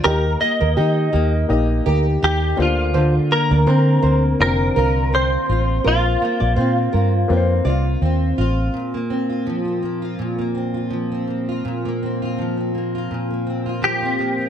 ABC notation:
X:1
M:4/4
L:1/16
Q:"Swing 16ths" 1/4=83
K:Bb
V:1 name="Clean electric guitar"
B2 e8 z2 G2 F2- | F2 B6 B4 c4 | F12- F2 z2 | z16 |
z12 G4 |]
V:2 name="Nylon-string guitar"
G z2 B G2 G z3 B z4 z | c z2 d c2 c z3 B z4 z | B z2 d c2 B z3 d z4 z | z16 |
z16 |]
V:3 name="Upright piano"
[B,EGe]6 z2 [B,EGe]6 [B,DFc]2- | [B,DFc]4 z4 [B,DFc]6 z2 | [B,CFc]6 z2 [B,CF_c=c]6 z2 | z16 |
z16 |]
V:4 name="Steel-string acoustic guitar"
z2 B,2 E2 B,2 E2 G2 E2 D,2 | D,2 B,2 C2 B,2 C2 F2 C2 F2 | z2 B,2 C2 B,2 C2 F2 C2 F2 | B,, B, C F F, C B, F B,, B, C F F, C B, F |
B,, B, C F F, C B, F B,, B, C F F, C B, F |]
V:5 name="Fingered electric bass" clef=bass
E,,2 z E,, E,2 E,,2 B,,,2 D,,2 E,,2 D,,2- | D,,2 z D,, D,2 D,,2 F,,,2 C,,4 A,,,2 | B,,,2 z B,,, B,,2 G,,2 F,,2 C,,2 E,,2 A,,,2 | z16 |
z16 |]